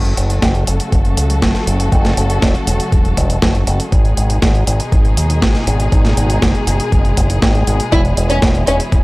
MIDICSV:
0, 0, Header, 1, 5, 480
1, 0, Start_track
1, 0, Tempo, 500000
1, 1846, Time_signature, 4, 2, 24, 8
1, 8676, End_track
2, 0, Start_track
2, 0, Title_t, "Violin section"
2, 0, Program_c, 0, 48
2, 7604, Note_on_c, 0, 64, 95
2, 7681, Note_off_c, 0, 64, 0
2, 7966, Note_on_c, 0, 61, 93
2, 8042, Note_off_c, 0, 61, 0
2, 8325, Note_on_c, 0, 61, 93
2, 8402, Note_off_c, 0, 61, 0
2, 8676, End_track
3, 0, Start_track
3, 0, Title_t, "String section"
3, 0, Program_c, 1, 48
3, 0, Note_on_c, 1, 49, 76
3, 0, Note_on_c, 1, 54, 70
3, 0, Note_on_c, 1, 57, 70
3, 0, Note_on_c, 1, 66, 68
3, 0, Note_on_c, 1, 69, 82
3, 3727, Note_off_c, 1, 49, 0
3, 3727, Note_off_c, 1, 54, 0
3, 3727, Note_off_c, 1, 57, 0
3, 3727, Note_off_c, 1, 66, 0
3, 3727, Note_off_c, 1, 69, 0
3, 3765, Note_on_c, 1, 56, 71
3, 3765, Note_on_c, 1, 63, 68
3, 3765, Note_on_c, 1, 68, 83
3, 3766, Note_on_c, 1, 47, 77
3, 3766, Note_on_c, 1, 51, 70
3, 7567, Note_off_c, 1, 51, 0
3, 7567, Note_off_c, 1, 63, 0
3, 7605, Note_on_c, 1, 52, 69
3, 7605, Note_on_c, 1, 64, 70
3, 8676, Note_off_c, 1, 47, 0
3, 8676, Note_off_c, 1, 52, 0
3, 8676, Note_off_c, 1, 56, 0
3, 8676, Note_off_c, 1, 64, 0
3, 8676, Note_off_c, 1, 68, 0
3, 8676, End_track
4, 0, Start_track
4, 0, Title_t, "Fingered electric bass"
4, 0, Program_c, 2, 33
4, 0, Note_on_c, 2, 30, 93
4, 138, Note_off_c, 2, 30, 0
4, 165, Note_on_c, 2, 30, 82
4, 377, Note_off_c, 2, 30, 0
4, 406, Note_on_c, 2, 30, 99
4, 618, Note_off_c, 2, 30, 0
4, 646, Note_on_c, 2, 30, 87
4, 752, Note_off_c, 2, 30, 0
4, 886, Note_on_c, 2, 30, 83
4, 1098, Note_off_c, 2, 30, 0
4, 1125, Note_on_c, 2, 37, 78
4, 1337, Note_off_c, 2, 37, 0
4, 1366, Note_on_c, 2, 30, 87
4, 1472, Note_off_c, 2, 30, 0
4, 1604, Note_on_c, 2, 30, 98
4, 1817, Note_off_c, 2, 30, 0
4, 1846, Note_on_c, 2, 30, 91
4, 2058, Note_off_c, 2, 30, 0
4, 2085, Note_on_c, 2, 30, 91
4, 2297, Note_off_c, 2, 30, 0
4, 2326, Note_on_c, 2, 28, 85
4, 2432, Note_off_c, 2, 28, 0
4, 2565, Note_on_c, 2, 28, 89
4, 2671, Note_off_c, 2, 28, 0
4, 2806, Note_on_c, 2, 28, 84
4, 3018, Note_off_c, 2, 28, 0
4, 3046, Note_on_c, 2, 28, 90
4, 3258, Note_off_c, 2, 28, 0
4, 3286, Note_on_c, 2, 30, 98
4, 3498, Note_off_c, 2, 30, 0
4, 3525, Note_on_c, 2, 30, 96
4, 3631, Note_off_c, 2, 30, 0
4, 3766, Note_on_c, 2, 32, 97
4, 3978, Note_off_c, 2, 32, 0
4, 4005, Note_on_c, 2, 32, 84
4, 4217, Note_off_c, 2, 32, 0
4, 4246, Note_on_c, 2, 32, 103
4, 4458, Note_off_c, 2, 32, 0
4, 4485, Note_on_c, 2, 32, 89
4, 4591, Note_off_c, 2, 32, 0
4, 4726, Note_on_c, 2, 32, 82
4, 4938, Note_off_c, 2, 32, 0
4, 4965, Note_on_c, 2, 39, 78
4, 5177, Note_off_c, 2, 39, 0
4, 5205, Note_on_c, 2, 32, 88
4, 5311, Note_off_c, 2, 32, 0
4, 5445, Note_on_c, 2, 32, 96
4, 5657, Note_off_c, 2, 32, 0
4, 5686, Note_on_c, 2, 32, 88
4, 5898, Note_off_c, 2, 32, 0
4, 5925, Note_on_c, 2, 32, 92
4, 6137, Note_off_c, 2, 32, 0
4, 6166, Note_on_c, 2, 30, 84
4, 6272, Note_off_c, 2, 30, 0
4, 6406, Note_on_c, 2, 30, 88
4, 6512, Note_off_c, 2, 30, 0
4, 6646, Note_on_c, 2, 30, 84
4, 6858, Note_off_c, 2, 30, 0
4, 6885, Note_on_c, 2, 30, 94
4, 7098, Note_off_c, 2, 30, 0
4, 7126, Note_on_c, 2, 32, 99
4, 7338, Note_off_c, 2, 32, 0
4, 7364, Note_on_c, 2, 32, 94
4, 7471, Note_off_c, 2, 32, 0
4, 7605, Note_on_c, 2, 28, 94
4, 7818, Note_off_c, 2, 28, 0
4, 7845, Note_on_c, 2, 28, 87
4, 8057, Note_off_c, 2, 28, 0
4, 8086, Note_on_c, 2, 28, 103
4, 8298, Note_off_c, 2, 28, 0
4, 8325, Note_on_c, 2, 28, 86
4, 8431, Note_off_c, 2, 28, 0
4, 8566, Note_on_c, 2, 28, 81
4, 8676, Note_off_c, 2, 28, 0
4, 8676, End_track
5, 0, Start_track
5, 0, Title_t, "Drums"
5, 47, Note_on_c, 9, 42, 27
5, 143, Note_off_c, 9, 42, 0
5, 167, Note_on_c, 9, 42, 91
5, 263, Note_off_c, 9, 42, 0
5, 288, Note_on_c, 9, 42, 53
5, 384, Note_off_c, 9, 42, 0
5, 406, Note_on_c, 9, 36, 108
5, 407, Note_on_c, 9, 38, 116
5, 407, Note_on_c, 9, 42, 52
5, 502, Note_off_c, 9, 36, 0
5, 503, Note_off_c, 9, 38, 0
5, 503, Note_off_c, 9, 42, 0
5, 527, Note_on_c, 9, 42, 26
5, 623, Note_off_c, 9, 42, 0
5, 646, Note_on_c, 9, 42, 91
5, 742, Note_off_c, 9, 42, 0
5, 767, Note_on_c, 9, 42, 52
5, 863, Note_off_c, 9, 42, 0
5, 886, Note_on_c, 9, 36, 116
5, 887, Note_on_c, 9, 42, 53
5, 982, Note_off_c, 9, 36, 0
5, 983, Note_off_c, 9, 42, 0
5, 1006, Note_on_c, 9, 42, 27
5, 1102, Note_off_c, 9, 42, 0
5, 1127, Note_on_c, 9, 42, 93
5, 1223, Note_off_c, 9, 42, 0
5, 1247, Note_on_c, 9, 42, 53
5, 1343, Note_off_c, 9, 42, 0
5, 1366, Note_on_c, 9, 36, 118
5, 1366, Note_on_c, 9, 38, 115
5, 1366, Note_on_c, 9, 42, 53
5, 1462, Note_off_c, 9, 36, 0
5, 1462, Note_off_c, 9, 38, 0
5, 1462, Note_off_c, 9, 42, 0
5, 1486, Note_on_c, 9, 38, 36
5, 1486, Note_on_c, 9, 42, 27
5, 1582, Note_off_c, 9, 38, 0
5, 1582, Note_off_c, 9, 42, 0
5, 1606, Note_on_c, 9, 42, 92
5, 1702, Note_off_c, 9, 42, 0
5, 1726, Note_on_c, 9, 42, 53
5, 1822, Note_off_c, 9, 42, 0
5, 1846, Note_on_c, 9, 36, 122
5, 1846, Note_on_c, 9, 42, 53
5, 1942, Note_off_c, 9, 36, 0
5, 1942, Note_off_c, 9, 42, 0
5, 1967, Note_on_c, 9, 38, 38
5, 1967, Note_on_c, 9, 42, 27
5, 2063, Note_off_c, 9, 38, 0
5, 2063, Note_off_c, 9, 42, 0
5, 2086, Note_on_c, 9, 42, 89
5, 2182, Note_off_c, 9, 42, 0
5, 2206, Note_on_c, 9, 42, 52
5, 2302, Note_off_c, 9, 42, 0
5, 2326, Note_on_c, 9, 36, 117
5, 2326, Note_on_c, 9, 38, 118
5, 2326, Note_on_c, 9, 42, 53
5, 2422, Note_off_c, 9, 36, 0
5, 2422, Note_off_c, 9, 38, 0
5, 2422, Note_off_c, 9, 42, 0
5, 2446, Note_on_c, 9, 42, 26
5, 2542, Note_off_c, 9, 42, 0
5, 2566, Note_on_c, 9, 42, 90
5, 2662, Note_off_c, 9, 42, 0
5, 2686, Note_on_c, 9, 42, 51
5, 2782, Note_off_c, 9, 42, 0
5, 2806, Note_on_c, 9, 36, 122
5, 2807, Note_on_c, 9, 42, 50
5, 2902, Note_off_c, 9, 36, 0
5, 2903, Note_off_c, 9, 42, 0
5, 2927, Note_on_c, 9, 42, 26
5, 3023, Note_off_c, 9, 42, 0
5, 3046, Note_on_c, 9, 36, 61
5, 3047, Note_on_c, 9, 42, 92
5, 3142, Note_off_c, 9, 36, 0
5, 3143, Note_off_c, 9, 42, 0
5, 3166, Note_on_c, 9, 42, 52
5, 3262, Note_off_c, 9, 42, 0
5, 3286, Note_on_c, 9, 36, 118
5, 3286, Note_on_c, 9, 38, 122
5, 3286, Note_on_c, 9, 42, 53
5, 3382, Note_off_c, 9, 36, 0
5, 3382, Note_off_c, 9, 38, 0
5, 3382, Note_off_c, 9, 42, 0
5, 3406, Note_on_c, 9, 42, 26
5, 3502, Note_off_c, 9, 42, 0
5, 3525, Note_on_c, 9, 42, 88
5, 3621, Note_off_c, 9, 42, 0
5, 3646, Note_on_c, 9, 42, 52
5, 3742, Note_off_c, 9, 42, 0
5, 3766, Note_on_c, 9, 36, 124
5, 3766, Note_on_c, 9, 42, 49
5, 3862, Note_off_c, 9, 36, 0
5, 3862, Note_off_c, 9, 42, 0
5, 3886, Note_on_c, 9, 42, 26
5, 3982, Note_off_c, 9, 42, 0
5, 4006, Note_on_c, 9, 42, 85
5, 4102, Note_off_c, 9, 42, 0
5, 4126, Note_on_c, 9, 42, 51
5, 4222, Note_off_c, 9, 42, 0
5, 4246, Note_on_c, 9, 36, 115
5, 4246, Note_on_c, 9, 38, 124
5, 4246, Note_on_c, 9, 42, 50
5, 4342, Note_off_c, 9, 36, 0
5, 4342, Note_off_c, 9, 38, 0
5, 4342, Note_off_c, 9, 42, 0
5, 4366, Note_on_c, 9, 42, 25
5, 4462, Note_off_c, 9, 42, 0
5, 4486, Note_on_c, 9, 42, 90
5, 4582, Note_off_c, 9, 42, 0
5, 4606, Note_on_c, 9, 42, 50
5, 4702, Note_off_c, 9, 42, 0
5, 4726, Note_on_c, 9, 36, 123
5, 4726, Note_on_c, 9, 42, 50
5, 4822, Note_off_c, 9, 36, 0
5, 4822, Note_off_c, 9, 42, 0
5, 4846, Note_on_c, 9, 42, 26
5, 4942, Note_off_c, 9, 42, 0
5, 4966, Note_on_c, 9, 42, 90
5, 5062, Note_off_c, 9, 42, 0
5, 5086, Note_on_c, 9, 42, 50
5, 5182, Note_off_c, 9, 42, 0
5, 5206, Note_on_c, 9, 36, 119
5, 5206, Note_on_c, 9, 38, 123
5, 5206, Note_on_c, 9, 42, 51
5, 5302, Note_off_c, 9, 36, 0
5, 5302, Note_off_c, 9, 38, 0
5, 5302, Note_off_c, 9, 42, 0
5, 5326, Note_on_c, 9, 38, 38
5, 5326, Note_on_c, 9, 42, 26
5, 5422, Note_off_c, 9, 38, 0
5, 5422, Note_off_c, 9, 42, 0
5, 5445, Note_on_c, 9, 42, 87
5, 5541, Note_off_c, 9, 42, 0
5, 5565, Note_on_c, 9, 42, 50
5, 5661, Note_off_c, 9, 42, 0
5, 5686, Note_on_c, 9, 36, 120
5, 5686, Note_on_c, 9, 42, 50
5, 5782, Note_off_c, 9, 36, 0
5, 5782, Note_off_c, 9, 42, 0
5, 5806, Note_on_c, 9, 38, 38
5, 5806, Note_on_c, 9, 42, 25
5, 5902, Note_off_c, 9, 38, 0
5, 5902, Note_off_c, 9, 42, 0
5, 5926, Note_on_c, 9, 42, 84
5, 6022, Note_off_c, 9, 42, 0
5, 6046, Note_on_c, 9, 42, 49
5, 6142, Note_off_c, 9, 42, 0
5, 6166, Note_on_c, 9, 36, 116
5, 6166, Note_on_c, 9, 38, 121
5, 6166, Note_on_c, 9, 42, 50
5, 6262, Note_off_c, 9, 36, 0
5, 6262, Note_off_c, 9, 38, 0
5, 6262, Note_off_c, 9, 42, 0
5, 6286, Note_on_c, 9, 42, 24
5, 6382, Note_off_c, 9, 42, 0
5, 6406, Note_on_c, 9, 42, 87
5, 6502, Note_off_c, 9, 42, 0
5, 6526, Note_on_c, 9, 42, 47
5, 6622, Note_off_c, 9, 42, 0
5, 6646, Note_on_c, 9, 36, 120
5, 6646, Note_on_c, 9, 42, 50
5, 6742, Note_off_c, 9, 36, 0
5, 6742, Note_off_c, 9, 42, 0
5, 6766, Note_on_c, 9, 42, 25
5, 6862, Note_off_c, 9, 42, 0
5, 6885, Note_on_c, 9, 42, 85
5, 6886, Note_on_c, 9, 36, 61
5, 6981, Note_off_c, 9, 42, 0
5, 6982, Note_off_c, 9, 36, 0
5, 7006, Note_on_c, 9, 42, 49
5, 7102, Note_off_c, 9, 42, 0
5, 7126, Note_on_c, 9, 36, 119
5, 7126, Note_on_c, 9, 38, 118
5, 7126, Note_on_c, 9, 42, 50
5, 7222, Note_off_c, 9, 36, 0
5, 7222, Note_off_c, 9, 38, 0
5, 7222, Note_off_c, 9, 42, 0
5, 7247, Note_on_c, 9, 42, 24
5, 7343, Note_off_c, 9, 42, 0
5, 7366, Note_on_c, 9, 42, 81
5, 7462, Note_off_c, 9, 42, 0
5, 7486, Note_on_c, 9, 42, 48
5, 7582, Note_off_c, 9, 42, 0
5, 7606, Note_on_c, 9, 36, 117
5, 7606, Note_on_c, 9, 42, 49
5, 7702, Note_off_c, 9, 36, 0
5, 7702, Note_off_c, 9, 42, 0
5, 7726, Note_on_c, 9, 42, 25
5, 7822, Note_off_c, 9, 42, 0
5, 7846, Note_on_c, 9, 42, 85
5, 7942, Note_off_c, 9, 42, 0
5, 7965, Note_on_c, 9, 42, 52
5, 8061, Note_off_c, 9, 42, 0
5, 8085, Note_on_c, 9, 38, 121
5, 8085, Note_on_c, 9, 42, 49
5, 8086, Note_on_c, 9, 36, 113
5, 8181, Note_off_c, 9, 38, 0
5, 8181, Note_off_c, 9, 42, 0
5, 8182, Note_off_c, 9, 36, 0
5, 8206, Note_on_c, 9, 42, 24
5, 8302, Note_off_c, 9, 42, 0
5, 8326, Note_on_c, 9, 42, 87
5, 8422, Note_off_c, 9, 42, 0
5, 8446, Note_on_c, 9, 42, 49
5, 8542, Note_off_c, 9, 42, 0
5, 8566, Note_on_c, 9, 36, 118
5, 8566, Note_on_c, 9, 42, 48
5, 8662, Note_off_c, 9, 36, 0
5, 8662, Note_off_c, 9, 42, 0
5, 8676, End_track
0, 0, End_of_file